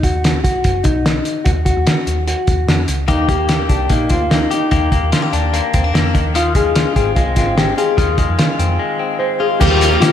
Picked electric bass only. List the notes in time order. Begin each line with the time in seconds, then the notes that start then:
Already playing: D#2
0.44 B1
0.65 F#1
0.85 B1
1.46 D#2
1.77 D#2
1.87 D#3
2.07 D#2
2.48 D#2
2.67 F2
2.88 C#2
3.09 D#2
3.69 C2
3.90 A#1
4.11 D2
4.72 D#2
5.03 D#2
5.13 D#3
5.33 D#2
5.74 D#2
5.94 F2
6.15 D#2
6.96 G#1
7.17 C2
7.37 G#1
7.98 D#2
8.29 F2
8.39 D#3
8.59 F2
9.61 D#2
10.01 D#3